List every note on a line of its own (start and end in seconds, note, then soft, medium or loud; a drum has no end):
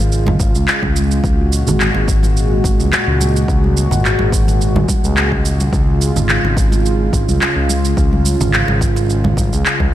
0.00 0.37 G#1 medium
0.00 1.20 C#3 medium
0.00 9.94 G#3 medium
0.00 1.20 F4 medium
0.00 9.94 F5 medium
0.12 shaker soft
0.27 muted conga medium
0.27 high conga medium
0.27 low conga loud
0.40 0.52 G#1 medium
0.40 kick loud
0.40 high conga medium
0.40 shaker medium
0.55 0.66 C#2 medium
0.55 shaker soft
0.68 clap loud
0.68 shaker soft
0.83 1.21 C#2 loud
0.83 kick medium
0.83 high conga medium
0.96 shaker medium
1.11 shaker soft
1.24 1.63 C#2 medium
1.24 5.69 A#2 medium
1.24 5.69 F#4 medium
1.24 kick loud
1.24 shaker soft
1.53 shaker medium
1.67 1.90 G#1 medium
1.67 low conga medium
1.67 shaker soft
1.80 clap medium
1.80 shaker soft
1.95 2.61 G#1 medium
1.95 muted conga soft
2.08 kick loud
2.08 shaker medium
2.23 muted conga soft
2.23 shaker soft
2.37 shaker soft
2.64 2.77 G#1 loud
2.64 kick medium
2.64 muted conga soft
2.64 shaker medium
2.80 2.90 C#2 medium
2.80 high conga medium
2.80 shaker soft
2.93 clap loud
2.93 muted conga medium
2.93 shaker soft
3.07 3.45 C#2 loud
3.21 muted conga soft
3.21 shaker medium
3.36 shaker soft
3.48 3.87 C#2 loud
3.48 kick loud
3.48 shaker soft
3.64 high conga medium
3.77 shaker medium
3.91 4.15 G#1 medium
3.91 low conga medium
3.91 shaker soft
4.05 clap medium
4.05 shaker soft
4.19 4.85 G#1 medium
4.19 muted conga soft
4.32 kick loud
4.32 shaker medium
4.48 muted conga soft
4.48 shaker soft
4.61 shaker soft
4.76 muted conga medium
4.76 high conga medium
4.76 low conga medium
4.89 kick medium
4.89 high conga medium
4.89 shaker medium
5.04 5.69 C#2 medium
5.04 shaker soft
5.17 clap medium
5.17 shaker soft
5.32 kick medium
5.32 high conga medium
5.45 shaker medium
5.60 high conga medium
5.60 shaker soft
5.73 6.12 C#2 loud
5.73 9.94 C#3 medium
5.73 9.94 F4 medium
5.73 kick loud
5.73 shaker soft
6.01 shaker medium
6.16 6.39 G#1 medium
6.16 low conga medium
6.16 shaker soft
6.29 clap medium
6.29 shaker soft
6.44 7.10 G#1 medium
6.44 muted conga soft
6.57 kick loud
6.57 shaker medium
6.72 muted conga soft
6.72 shaker soft
6.86 shaker soft
7.13 7.25 G#1 loud
7.13 kick medium
7.13 muted conga soft
7.13 shaker medium
7.28 7.39 C#2 medium
7.28 high conga medium
7.28 shaker soft
7.42 clap medium
7.42 muted conga medium
7.42 shaker soft
7.56 7.94 C#2 loud
7.70 muted conga soft
7.70 shaker medium
7.85 shaker soft
7.97 8.36 C#2 loud
7.97 kick loud
7.97 shaker soft
8.13 high conga medium
8.26 shaker medium
8.41 8.63 G#1 medium
8.41 low conga medium
8.41 shaker soft
8.54 clap medium
8.54 shaker soft
8.68 9.34 G#1 medium
8.68 muted conga soft
8.81 kick medium
8.81 shaker medium
8.96 muted conga soft
8.96 shaker soft
9.10 shaker soft
9.24 muted conga medium
9.24 high conga medium
9.24 low conga medium
9.37 9.50 G#1 medium
9.37 kick medium
9.37 high conga medium
9.37 shaker medium
9.52 9.63 C#2 medium
9.52 shaker soft
9.66 clap medium
9.66 shaker soft
9.80 9.94 C#2 loud
9.80 kick medium
9.80 high conga medium